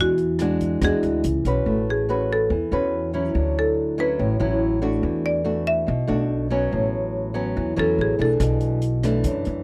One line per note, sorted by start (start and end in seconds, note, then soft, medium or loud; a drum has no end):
0.00 0.78 E2 medium
0.00 0.80 E3 medium
0.00 0.13 G#3 medium
0.00 0.13 D4 medium
0.00 0.13 F#4 medium
0.00 0.86 F#4 medium
0.18 closed hi-hat soft
0.39 0.79 G#3 medium
0.39 0.79 D4 medium
0.39 0.79 F#4 medium
0.39 cross-stick medium
0.39 closed hi-hat soft
0.60 kick soft
0.60 closed hi-hat soft
0.81 0.92 E2 loud
0.81 1.64 E3 medium
0.81 1.24 G#3 medium
0.81 1.24 D4 medium
0.81 1.25 F#4 medium
0.81 1.22 G#4 medium
0.81 kick medium
0.81 cross-stick medium
0.81 closed hi-hat soft
1.03 1.22 D2 medium
1.03 closed hi-hat soft
1.24 1.43 C#2 medium
1.24 closed hi-hat soft
1.45 1.64 B1 medium
1.45 2.07 C#4 medium
1.45 2.07 F#4 medium
1.45 2.08 B4 medium
1.45 kick soft
1.45 closed hi-hat soft
1.66 2.46 A1 medium
1.66 2.49 A3 medium
1.90 2.28 G#4 medium
2.09 2.50 C#4 medium
2.09 2.51 F#4 medium
2.09 2.51 B4 medium
2.33 2.90 A4 medium
2.50 2.70 E2 medium
2.50 3.33 E3 medium
2.72 3.31 E2 medium
2.72 3.11 C#4 medium
2.72 3.11 F#4 medium
2.72 3.11 B4 medium
3.13 3.95 F#3 medium
3.13 3.95 C#4 medium
3.13 3.95 E4 medium
3.35 4.15 D2 medium
3.35 4.17 D3 medium
3.59 3.97 A4 medium
3.98 4.37 F#3 medium
3.98 4.37 C#4 medium
3.98 4.37 E4 medium
3.98 4.58 B4 medium
4.19 4.39 A1 medium
4.19 5.02 A2 medium
4.40 5.00 A1 medium
4.40 4.79 F#3 medium
4.40 4.79 C#4 medium
4.40 4.79 E4 medium
4.82 5.42 A3 medium
4.82 5.42 D4 medium
4.82 5.42 F#4 medium
5.03 5.84 E2 medium
5.03 5.86 E3 medium
5.26 5.65 D5 medium
5.44 5.87 A3 medium
5.44 5.87 D4 soft
5.44 5.88 F#4 soft
5.67 6.26 E5 medium
5.87 6.08 B1 medium
5.87 6.70 B2 medium
6.08 6.68 B1 medium
6.08 6.47 A3 medium
6.08 6.48 D4 medium
6.08 6.48 F#4 medium
6.50 7.32 F#3 medium
6.50 7.32 B3 medium
6.50 7.32 C#4 medium
6.72 7.53 A1 medium
6.72 7.54 A2 medium
7.34 7.74 F#3 medium
7.34 7.74 B3 medium
7.34 7.74 C#4 medium
7.56 7.76 E2 medium
7.56 8.17 E3 medium
7.76 7.97 E2 medium
7.76 8.16 F#3 medium
7.76 8.16 B3 medium
7.76 8.16 C#4 medium
7.76 7.99 A4 medium
7.98 8.18 A1 medium
7.98 8.21 G#4 medium
8.19 8.39 B1 medium
8.19 8.79 E3 medium
8.19 8.80 A3 medium
8.19 8.80 D4 medium
8.19 8.60 A4 medium
8.40 9.21 B1 medium
8.40 9.23 B2 medium
8.40 kick medium
8.40 cross-stick medium
8.40 closed hi-hat soft
8.61 closed hi-hat soft
8.82 closed hi-hat soft
9.03 9.63 E3 medium
9.03 9.63 A3 medium
9.03 9.63 D4 medium
9.03 kick soft
9.03 cross-stick medium
9.03 closed hi-hat soft
9.24 9.44 F#2 medium
9.24 9.63 F#2 medium
9.24 kick medium
9.24 closed hi-hat soft
9.45 9.63 F#2 medium
9.45 closed hi-hat soft